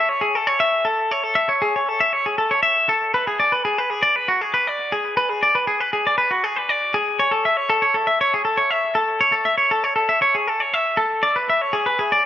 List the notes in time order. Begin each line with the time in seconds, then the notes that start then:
0.09 C#5
0.21 G#4
0.35 A4
0.47 C#5
0.60 E5
0.85 A4
1.11 C#5
1.23 A4
1.35 E5
1.49 C#5
1.62 G#4
1.76 C#5
1.89 A4
2.00 E5
2.13 C#5
2.26 G#4
2.38 A4
2.51 C#5
2.63 E5
2.89 A4
3.14 B4
3.27 G#4
3.40 D5
3.52 B4
3.65 G#4
3.78 B4
3.90 G#4
4.03 D5
4.16 B4
4.28 F#4
4.41 G#4
4.54 B4
4.67 D5
4.92 G#4
5.17 B4
5.29 G#4
5.43 D5
5.55 B4
5.67 G#4
5.80 B4
5.93 G#4
6.07 D5
6.18 B4
6.31 F#4
6.44 G#4
6.56 B4
6.69 D5
6.94 G#4
7.19 C#5
7.31 A4
7.45 E5
7.57 C#5
7.70 A4
7.82 C#5
7.94 A4
8.07 E5
8.21 C#5
8.34 G#4
8.45 A4
8.57 C#5
8.71 E5
8.95 A4
9.21 C#5
9.32 A4
9.45 E5
9.58 C#5
9.71 A4
9.84 C#5
9.96 A4
10.09 E5
10.22 C#5
10.35 G#4
10.48 A4
10.60 C#5
10.74 E5
10.97 A4
11.23 D5
11.36 B4
11.50 E5
11.62 C#5
11.73 G#4
11.86 B4
11.99 G#4
12.12 D5